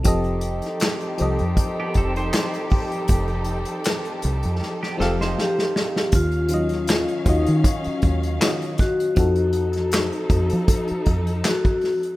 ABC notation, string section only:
X:1
M:4/4
L:1/8
Q:"Swing 16ths" 1/4=79
K:Fphr
V:1 name="String section"
[F,E=G=A]8- | [F,E=G=A]8 | [E,Df]8 | [F,E=A]8 |]